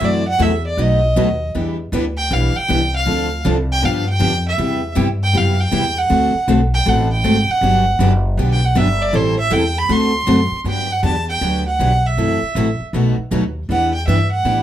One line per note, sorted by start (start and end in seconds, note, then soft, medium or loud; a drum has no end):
0.00 0.38 F#2 medium
0.00 0.22 C3 medium
0.00 0.23 E3 medium
0.00 0.23 F#3 medium
0.00 0.23 A3 medium
0.00 0.23 C4 medium
0.00 0.23 E4 medium
0.00 0.23 F#4 medium
0.00 0.24 A4 medium
0.05 0.27 D5 medium
0.28 0.43 F#5 loud
0.39 0.77 E2 medium
0.39 0.51 C3 medium
0.39 0.51 E3 medium
0.39 0.51 F#3 medium
0.39 0.51 A3 loud
0.39 0.51 C4 medium
0.39 0.51 E4 medium
0.39 0.51 F#4 medium
0.39 0.51 A4 loud
0.39 0.65 E5 loud
0.67 0.83 D5 loud
0.77 1.15 B1 medium
0.77 1.00 B2 medium
0.77 1.00 F#3 medium
0.77 1.00 A3 medium
0.77 1.00 D#4 medium
0.77 1.00 F#4 medium
0.77 1.00 B4 medium
0.77 1.49 D#5 medium
1.16 1.53 D#2 loud
1.16 1.28 B2 loud
1.16 1.28 F#3 medium
1.16 1.28 A3 medium
1.16 1.28 D#4 medium
1.16 1.28 F#4 loud
1.16 1.28 B4 loud
1.55 1.92 E2 medium
1.55 1.76 E3 medium
1.55 1.76 G3 medium
1.55 1.76 B3 medium
1.55 1.76 D4 medium
1.55 1.76 E4 medium
1.55 1.76 G4 medium
1.55 1.77 B4 medium
1.92 2.29 D2 loud
1.92 2.04 E3 loud
1.92 2.04 G3 medium
1.92 2.04 B3 medium
1.92 2.04 D4 loud
1.92 2.04 E4 loud
1.92 2.05 G4 loud
1.92 2.04 B4 loud
2.17 2.34 G5 loud
2.31 2.53 B1 medium
2.31 2.52 E3 medium
2.31 2.52 G3 medium
2.31 2.52 B3 medium
2.31 2.52 D4 medium
2.31 2.53 E4 medium
2.31 2.53 G4 medium
2.31 2.53 B4 medium
2.31 2.57 F5 medium
2.56 2.93 G5 loud
2.69 3.06 C2 medium
2.69 2.81 E3 medium
2.69 2.81 G3 medium
2.69 2.80 B3 medium
2.69 2.81 D4 medium
2.69 2.81 E4 medium
2.69 2.81 G4 medium
2.69 2.81 B4 loud
2.96 3.43 F5 loud
3.07 3.43 D2 medium
3.07 3.28 D3 medium
3.07 3.29 F3 medium
3.07 3.29 C4 medium
3.07 3.29 D4 medium
3.07 3.29 A4 medium
3.45 3.82 C2 loud
3.45 3.56 D3 medium
3.45 3.56 F3 medium
3.45 3.56 C4 medium
3.45 3.56 D4 loud
3.45 3.57 A4 loud
3.72 3.87 G5 loud
3.83 4.20 G2 medium
3.83 4.04 D3 medium
3.83 4.05 F3 medium
3.83 4.05 B3 medium
3.83 4.05 D4 medium
3.83 4.05 G4 medium
3.83 4.08 F5 medium
4.09 4.44 G5 loud
4.20 4.57 F2 loud
4.20 4.32 D3 loud
4.20 4.32 F3 medium
4.20 4.32 B3 medium
4.20 4.33 D4 medium
4.20 4.33 G4 medium
4.48 4.95 E5 medium
4.58 4.95 E2 medium
4.58 4.80 C3 medium
4.58 4.80 G3 medium
4.58 4.81 B3 medium
4.58 4.81 E4 medium
4.58 4.81 G4 medium
4.96 5.33 G2 loud
4.96 5.08 C3 medium
4.96 5.08 G3 medium
4.96 5.08 B3 medium
4.96 5.08 E4 medium
4.96 5.08 G4 loud
5.23 5.39 G5 loud
5.34 5.71 F#2 medium
5.34 5.56 C3 medium
5.34 5.56 G3 medium
5.34 5.56 B3 medium
5.34 5.56 E4 medium
5.34 5.56 G4 medium
5.34 5.61 F5 medium
5.60 6.00 G5 loud
5.72 6.09 E2 medium
5.72 5.84 C3 medium
5.72 5.84 G3 loud
5.72 5.84 B3 medium
5.72 5.84 E4 medium
5.72 5.84 G4 loud
5.98 6.49 F#5 loud
6.10 6.33 D2 medium
6.10 6.32 D3 medium
6.10 6.32 A3 medium
6.10 6.32 C4 medium
6.10 6.32 F#4 medium
6.10 6.32 A4 medium
6.34 muted upright bass stroke soft
6.48 6.85 B1 loud
6.48 6.60 D3 medium
6.48 6.60 A3 medium
6.48 6.60 C4 loud
6.48 6.60 F#4 loud
6.48 6.60 A4 loud
6.74 6.90 G5 loud
6.85 7.23 A1 loud
6.85 7.07 D3 medium
6.85 7.08 A3 medium
6.85 7.08 C4 medium
6.85 7.08 F#4 medium
6.85 7.08 A4 medium
6.85 7.12 F#5 loud
7.12 7.52 G5 loud
7.24 7.47 G#1 loud
7.24 7.36 D3 medium
7.24 7.36 A3 medium
7.24 7.36 C4 loud
7.24 7.36 F#4 loud
7.24 7.36 A4 loud
7.49 8.01 F#5 loud
7.49 muted upright bass stroke soft
7.61 7.99 G1 medium
7.61 7.84 D3 medium
7.61 7.84 F#3 medium
7.61 7.84 B3 medium
7.61 7.84 D4 medium
7.61 7.84 G4 medium
7.99 8.36 F#1 loud
7.99 8.11 D3 medium
7.99 8.12 F#3 loud
7.99 8.12 B3 loud
7.99 8.12 D4 loud
7.99 8.12 G4 loud
8.37 8.75 B1 loud
8.37 8.59 D3 medium
8.37 8.59 F#3 medium
8.37 8.60 B3 medium
8.37 8.60 D4 medium
8.37 8.60 G4 medium
8.52 8.67 G5 loud
8.65 8.79 F#5 medium
8.76 9.13 G1 loud
8.76 8.87 D3 medium
8.76 8.87 F#3 loud
8.76 8.88 B3 loud
8.76 8.87 D4 loud
8.76 8.87 G4 loud
8.76 9.04 E5 loud
9.02 9.17 D5 loud
9.13 9.50 A1 loud
9.13 9.35 E3 medium
9.13 9.35 G3 medium
9.13 9.35 C4 medium
9.13 9.35 E4 medium
9.13 9.35 A4 medium
9.13 9.39 C5 loud
9.39 9.54 E5 loud
9.51 9.88 E2 loud
9.51 9.63 E3 loud
9.51 9.63 G3 loud
9.51 9.63 C4 medium
9.51 9.63 E4 loud
9.51 9.64 A4 loud
9.51 9.80 G5 loud
9.78 9.93 B5 loud
9.89 10.26 D2 loud
9.89 10.11 D3 medium
9.89 10.11 A3 medium
9.89 10.11 C4 medium
9.89 10.11 F#4 medium
9.89 10.11 A4 medium
9.89 10.60 C6 loud
10.27 10.50 F#2 loud
10.27 10.39 D3 medium
10.27 10.39 A3 medium
10.27 10.39 C4 loud
10.27 10.40 F#4 loud
10.27 10.39 A4 loud
10.51 muted upright bass stroke soft
10.64 11.02 G2 medium
10.64 10.87 D3 medium
10.64 10.87 F#3 medium
10.64 10.87 B3 medium
10.64 10.87 D4 medium
10.64 10.87 G4 medium
10.64 10.93 G5 loud
10.92 11.04 F#5 loud
11.03 11.40 E2 loud
11.03 11.15 D3 medium
11.03 11.15 F#3 medium
11.03 11.15 B3 medium
11.03 11.15 D4 medium
11.03 11.15 G4 medium
11.03 11.27 A5 loud
11.29 11.64 G5 loud
11.41 11.78 D2 medium
11.41 11.63 D3 medium
11.41 11.63 F#3 medium
11.41 11.63 B3 medium
11.41 11.63 D4 medium
11.41 11.63 G4 medium
11.68 12.08 F#5 medium
11.79 12.16 B1 medium
11.79 11.91 D3 medium
11.79 11.91 F#3 medium
11.79 11.91 B3 medium
11.79 11.91 D4 medium
11.79 11.92 G4 medium
12.06 12.81 E5 medium
12.17 12.40 F#1 medium
12.17 12.39 C3 medium
12.17 12.39 E3 medium
12.17 12.39 F#3 medium
12.17 12.39 A3 medium
12.17 12.39 C4 medium
12.17 12.40 E4 medium
12.17 12.40 F#4 medium
12.17 12.39 A4 medium
12.42 muted upright bass stroke soft
12.55 12.78 A1 loud
12.55 12.67 C3 medium
12.55 12.67 E3 medium
12.55 12.67 F#3 medium
12.55 12.68 A3 medium
12.55 12.67 C4 medium
12.55 12.67 E4 medium
12.55 12.68 F#4 medium
12.55 12.67 A4 medium
12.80 muted upright bass stroke soft
12.93 13.16 B1 medium
12.93 13.15 B2 medium
12.93 13.15 F#3 medium
12.93 13.15 A3 medium
12.93 13.15 D#4 medium
12.93 13.15 F#4 medium
12.93 13.16 B4 medium
13.18 muted upright bass stroke soft
13.31 13.68 D#2 medium
13.31 13.43 B2 medium
13.31 13.42 F#3 medium
13.31 13.43 A3 medium
13.31 13.43 D#4 medium
13.31 13.43 F#4 loud
13.31 13.43 B4 medium
13.69 14.06 E2 medium
13.69 13.91 E3 medium
13.69 13.91 G3 medium
13.69 13.92 B3 medium
13.69 13.91 D4 medium
13.69 13.91 E4 medium
13.69 13.92 G4 medium
13.69 13.91 B4 medium
13.69 13.93 F#5 medium
13.94 14.07 G5 medium
14.07 14.44 G2 medium
14.07 14.19 E3 loud
14.07 14.19 G3 medium
14.07 14.19 B3 medium
14.07 14.19 D4 medium
14.07 14.19 E4 loud
14.07 14.20 G4 loud
14.07 14.19 B4 loud
14.07 14.30 E5 medium
14.31 14.63 F#5 medium
14.45 14.63 A2 medium
14.45 14.63 E3 medium
14.45 14.63 G3 medium
14.45 14.63 B3 medium
14.45 14.63 D4 medium
14.45 14.63 E4 medium
14.45 14.63 G4 medium
14.45 14.63 B4 medium